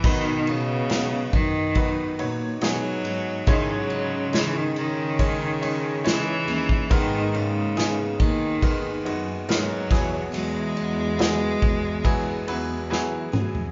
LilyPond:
<<
  \new Staff \with { instrumentName = "Grand piano" } { \time 4/4 \key b \major \tempo 4 = 70 <fis b dis' b'>4 <fis b dis' b'>4 <fis b dis' b'>8 <fis dis' b' cis''>8 <fis b dis' gis'>4 | <gis dis' e' cis''>4 <gis cis' dis' cis''>4 <gis cis' dis' cis''>8 <gis cis' dis' cis''>8 <gis dis' e' cis''>4 | <gis b dis' ais'>4 <gis b dis' gis'>4 <gis b dis' ais'>8 <gis b dis' fis'>8 <gis b dis' ais'>8 <fis b e' gis'>8~ | <fis b e' gis'>4 <fis b e' gis'>4 <fis b e' gis'>8 <fis b e' b'>8 <fis b e' gis'>4 | }
  \new Staff \with { instrumentName = "Grand piano" } { \clef bass \time 4/4 \key b \major r1 | gis,4. r2 r8 | <gis, dis>4. r2 b,8~ | b,4 r2. | }
  \new Staff \with { instrumentName = "Steel-string acoustic guitar" } { \time 4/4 \key b \major <b, dis fis b dis' b'>2 <fis dis' b'>4. <fis b dis' b'>8 | <cis gis cis' dis' gis'>2 <gis cis' dis' gis'>4. <gis cis' dis' gis'>8 | <gis, dis ais b dis' gis'>2 <ais b dis' gis'>4. <b fis' gis'>8 | <e fis b fis' gis'>2 <fis b fis' gis'>4. <b fis' gis'>8 | }
  \new Staff \with { instrumentName = "Cello" } { \clef bass \time 4/4 \key b \major dis8 cis4 dis4 r8 fis4 | dis16 fis8. e16 dis16 dis4. e4 | dis8 cis4 dis4 r8 fis4 | gis2. r4 | }
  \new Staff \with { instrumentName = "Cello section" } { \clef bass \time 4/4 \key b \major b,4. fis,8. r16 ais,8 b,8 gis,8 | cis4. cis4 cis4 dis,8 | gis,4. dis,8. r16 fis,8 gis,8 e,8 | e,4. e,4 e,4 fis,8 | }
  \new DrumStaff \with { instrumentName = "Drums" } \drummode { \time 4/4 <cymc bd>8 cymr8 <cymr sn>8 <bd cymr>8 <bd cymr>8 cymr8 <cymr sn>8 cymr8 | <bd cymr>8 cymr8 <cymr sn>8 cymr8 <bd cymr>8 cymr8 <cymr sn>8 cymr16 bd16 | <bd cymr>8 cymr8 <cymr sn>8 <bd cymr>8 <bd cymr>8 cymr8 <cymr sn>8 <bd cymr sn>8 | cymr8 cymr8 <cymr sn>8 <bd cymr>8 <bd cymr>8 cymr8 sn8 toml16 tomfh16 | }
>>